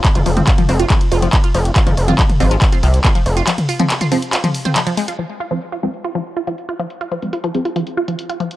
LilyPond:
<<
  \new Staff \with { instrumentName = "Synth stab" } { \clef bass \time 4/4 \key f \minor \tempo 4 = 140 r8. <f aes c'>16 r8 <f aes c'>16 r2 r16 | r8. <f aes c'>16 r8 <f aes c'>16 r2 r16 | r8. <f aes c'>16 r8 <f aes c'>16 r2 r16 | r8. <f aes c'>16 r8 <f aes c'>16 r2 r16 |
r8. <f aes c'>16 r8 <f aes c'>16 r2 r16 | }
  \new Staff \with { instrumentName = "Synth arpeggio sound" } { \clef bass \time 4/4 \key f \minor r16 f'16 f16 r16 f'16 f16 r16 f'16 f16 r16 f'16 f16 r16 f'16 f16 r16 | f'16 f16 r16 f'16 f16 r16 f'16 f16 r16 f'16 f16 r16 f'16 f16 r16 f'16 | f16 r16 f'16 f16 r16 f'16 f16 r16 f'16 f16 r16 c'16 f16 f16 aes16 f'16 | f16 r16 f'16 f16 r16 f'16 f16 r16 f'16 f16 r16 f'16 f16 r16 f'16 f16 |
r16 f'16 f16 r16 f'16 f16 r16 f'16 f16 r16 f'16 f16 r16 f'16 f16 r16 | }
  \new Staff \with { instrumentName = "Analog synth bass" } { \clef bass \time 4/4 \key f \minor r16 f,,16 f,,8 r8 f,,8 r8 f,,8 r8 f,,8 | r16 f,,16 f,,8 r8 aes,,8 r8 c,8 r8 f,,8 | r1 | r1 |
r1 | }
  \new DrumStaff \with { instrumentName = "Drums" } \drummode { \time 4/4 <hc hh bd cymr>16 <hh toml>16 hho16 <hh toml>16 <hc hh bd cymr>16 <hh toml>16 hho16 hh16 <hc hh bd cymr>16 hh16 hho16 hh16 <hc hh bd cymr>16 hh16 hho16 hh16 | <hc hh bd cymr>16 <hh toml>16 hho16 <hh toml>16 <hc hh bd cymr>16 <hh toml>16 hho16 hh16 <hc hh bd cymr>16 hh16 hho16 hh16 <hc hh bd cymr>16 hh16 hho16 hh16 | <hc hh cymr>16 <hh toml>16 hho16 <hh toml>16 <hc hh cymr>16 <hh toml>16 hho16 hh16 <hc hh cymr>16 <hh toml>16 hho16 <hh toml>16 <hc hh cymr>16 hh16 hho16 hh16 | r8 hh16 hh16 hh16 hh16 hh16 hh16 hh16 hh8 hh16 hh16 hh16 hh16 hh16 |
hh16 hh16 hh16 hh16 hh16 hh16 hh16 hh16 hh16 hh8 hh16 hh16 hh16 hh16 hh16 | }
>>